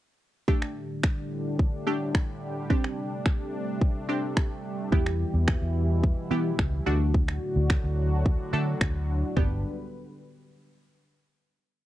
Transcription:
0.48 A2 D3 G3 A3 D4 G4, kick
0.62 finger snap
1.03 finger snap, kick
1.59 kick
1.87 A3 D4 G4
2.15 finger snap, kick
2.70 C3 A3 C4 D4 G4, kick
2.84 finger snap
3.26 finger snap, kick
3.81 kick
4.09 C4 D4 G4
4.37 finger snap, kick
4.92 E2 B2 E3 B3 E4 G4, kick
5.06 finger snap
5.34 E2
5.48 finger snap, kick
5.62 E2
6.04 kick
6.31 E3 B3 E4 G4
6.59 C#2, finger snap, kick
6.86 D2 A2 D3 F#3 A3 D4 F#4
7.14 kick
7.28 finger snap
7.56 D2
7.70 finger snap, kick
7.84 D2
8.26 kick
8.53 D3 A3 D4 A4
8.81 D2, finger snap, kick
9.36 G1 D3 G3 B3 D4 G4 B4, kick, floor tom

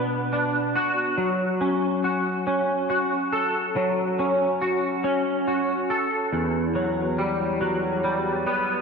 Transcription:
Already playing: B2 B3 D4
0.33 D4
0.76 F#4
1.18 F#3
1.61 C#4
2.04 F#4
2.47 C#4
2.90 F#4
3.33 A4
3.76 F#3
4.19 C#4
4.62 F#4
5.04 C#4
5.48 F#4
5.90 A4
6.33 E2
6.75 F#3
7.18 G3
7.61 F#3
8.04 G3
8.47 B3

